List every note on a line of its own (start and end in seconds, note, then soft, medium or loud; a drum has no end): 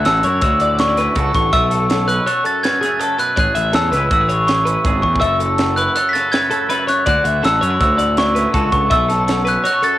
0.00 1.14 D3 medium
0.00 0.97 A3 medium
0.00 0.42 F#4 medium
0.05 0.22 A1 medium
0.05 1.50 F#3 medium
0.05 0.24 A4 medium
0.05 0.41 E6 medium
0.05 snare loud
0.05 closed hi-hat medium
0.23 0.40 F#2 medium
0.23 0.78 E4 medium
0.23 0.61 C#5 medium
0.23 closed hi-hat medium
0.41 1.07 D2 medium
0.41 1.15 F#4 medium
0.41 0.80 E6 medium
0.41 kick loud
0.41 snare soft
0.41 closed hi-hat loud
0.60 1.15 A2 medium
0.60 0.98 D5 medium
0.60 closed hi-hat medium
0.78 0.87 C#4 medium
0.78 1.14 C#6 medium
0.78 snare loud
0.78 closed hi-hat medium
0.87 1.52 E4 medium
0.97 1.56 C#4 medium
0.97 1.17 B4 medium
0.97 snare soft
0.97 closed hi-hat medium
1.15 1.32 C#2 medium
1.15 1.50 D3 medium
1.15 1.53 F#4 medium
1.15 1.53 A4 medium
1.15 kick loud
1.15 closed hi-hat medium
1.34 1.51 A1 medium
1.34 1.54 C#6 medium
1.34 kick medium
1.34 snare soft
1.34 closed hi-hat medium
1.53 2.18 B1 medium
1.53 2.45 B2 medium
1.53 2.27 A4 medium
1.53 1.71 E5 loud
1.53 2.10 E6 loud
1.53 kick loud
1.53 closed hi-hat medium
1.71 2.08 A4 medium
1.71 closed hi-hat medium
1.90 3.35 F#3 medium
1.90 snare loud
1.90 closed hi-hat medium
2.08 2.64 C#4 medium
2.08 2.26 B4 medium
2.08 2.25 F#6 medium
2.08 closed hi-hat medium
2.26 3.39 A4 medium
2.26 2.44 C#5 medium
2.26 2.44 F#6 medium
2.26 closed hi-hat medium
2.44 3.37 F#2 medium
2.44 2.64 A4 medium
2.44 2.63 A6 medium
2.44 closed hi-hat medium
2.63 3.93 C#4 medium
2.63 2.81 B4 medium
2.63 3.20 G#6 loud
2.63 snare loud
2.63 closed hi-hat medium
2.81 4.67 A3 medium
2.81 2.99 G#4 medium
2.81 snare soft
2.81 closed hi-hat medium
2.99 3.18 C#3 medium
2.99 3.18 A4 medium
2.99 closed hi-hat medium
3.18 3.37 B2 medium
3.18 3.36 B4 medium
3.18 3.37 F#6 medium
3.18 closed hi-hat medium
3.36 3.46 A1 medium
3.36 4.29 A2 medium
3.36 4.10 G#4 medium
3.36 3.55 C#5 medium
3.36 3.76 F#6 medium
3.36 kick loud
3.36 closed hi-hat medium
3.55 3.72 A1 medium
3.55 3.74 E5 medium
3.55 closed hi-hat medium
3.73 3.90 E2 medium
3.73 5.59 E3 medium
3.73 3.91 A4 medium
3.73 4.09 E6 medium
3.73 snare loud
3.73 closed hi-hat medium
3.92 4.08 C#2 loud
3.92 4.49 E4 medium
3.92 4.29 B4 medium
3.92 snare soft
3.92 closed hi-hat medium
4.11 4.76 A1 medium
4.11 4.21 F#4 medium
4.11 4.50 E6 medium
4.11 kick loud
4.11 closed hi-hat medium
4.21 4.85 G#4 medium
4.29 4.84 A2 medium
4.29 4.66 C#5 medium
4.29 closed hi-hat medium
4.47 5.25 E4 medium
4.47 4.82 C#6 medium
4.47 snare medium
4.47 closed hi-hat medium
4.65 6.51 C#4 medium
4.65 4.84 B4 medium
4.65 closed hi-hat medium
4.85 5.01 G#1 medium
4.85 5.20 A2 medium
4.85 5.20 G#4 medium
4.85 kick loud
4.85 closed hi-hat medium
5.02 5.20 E2 medium
5.02 5.22 C#6 medium
5.02 kick medium
5.15 kick medium
5.20 5.87 F#1 medium
5.20 6.68 F#2 medium
5.20 5.96 A4 medium
5.20 5.40 E5 medium
5.20 5.72 E6 medium
5.20 kick medium
5.20 closed hi-hat medium
5.40 5.77 A4 medium
5.40 closed hi-hat medium
5.58 7.42 F#3 medium
5.58 snare loud
5.58 closed hi-hat medium
5.76 6.33 E4 medium
5.76 5.96 B4 medium
5.76 5.94 F#6 medium
5.76 closed hi-hat medium
5.96 6.69 A4 medium
5.96 6.14 C#5 medium
5.96 6.10 F#6 medium
5.96 closed hi-hat loud
6.09 6.14 B6 medium
6.13 7.04 C#3 medium
6.13 6.32 A4 medium
6.13 6.33 A6 medium
6.13 snare soft
6.13 closed hi-hat medium
6.32 7.09 E4 medium
6.32 6.50 B4 medium
6.32 6.84 G#6 medium
6.32 snare loud
6.32 closed hi-hat medium
6.51 8.36 A3 medium
6.51 6.69 A4 medium
6.51 closed hi-hat medium
6.69 7.06 F#2 medium
6.69 7.07 A4 medium
6.69 6.87 B4 medium
6.69 snare soft
6.69 closed hi-hat loud
6.87 7.06 C#5 medium
6.87 7.07 F#6 medium
6.87 snare soft
6.87 closed hi-hat medium
7.06 7.15 D2 medium
7.06 8.52 D3 medium
7.06 7.81 F#4 medium
7.06 7.24 D5 loud
7.06 7.46 F#6 loud
7.06 kick loud
7.06 closed hi-hat medium
7.24 7.41 D2 medium
7.24 7.43 E5 medium
7.24 closed hi-hat medium
7.42 7.60 A1 medium
7.42 9.27 F#3 medium
7.42 7.62 A4 medium
7.42 7.78 E6 medium
7.42 snare loud
7.42 closed hi-hat medium
7.61 7.78 F#2 loud
7.61 7.70 C#4 medium
7.61 7.98 C#5 medium
7.61 closed hi-hat medium
7.70 8.17 E4 medium
7.81 8.46 D2 medium
7.81 8.53 F#4 medium
7.81 8.15 E6 medium
7.81 kick loud
7.81 snare soft
7.81 closed hi-hat medium
7.98 8.54 A2 medium
7.98 8.35 D5 medium
7.98 closed hi-hat medium
8.17 9.30 E4 medium
8.17 8.52 C#6 medium
8.17 snare loud
8.17 closed hi-hat medium
8.35 8.89 C#4 medium
8.35 8.54 B4 medium
8.35 snare soft
8.35 closed hi-hat medium
8.53 8.71 C#2 medium
8.53 8.88 D3 medium
8.53 8.90 F#4 medium
8.53 8.91 A4 medium
8.53 kick loud
8.53 closed hi-hat medium
8.72 8.89 C#2 medium
8.72 8.91 C#6 medium
8.72 kick medium
8.72 closed hi-hat medium
8.90 9.56 B1 loud
8.90 9.82 B2 medium
8.90 9.64 A4 medium
8.90 9.09 E5 medium
8.90 9.48 E6 loud
8.90 kick loud
8.90 closed hi-hat medium
9.08 9.44 A4 medium
9.08 snare soft
9.08 closed hi-hat medium
9.27 9.98 F#3 medium
9.27 snare loud
9.27 closed hi-hat medium
9.45 9.98 C#4 medium
9.45 9.64 B4 medium
9.45 9.56 F#6 medium
9.45 closed hi-hat medium
9.64 9.72 F#4 medium
9.64 9.82 C#5 medium
9.64 9.84 F#6 medium
9.64 closed hi-hat loud
9.72 9.98 A4 medium
9.82 9.98 F#2 medium
9.82 9.98 A4 medium
9.82 9.98 A6 medium
9.82 closed hi-hat medium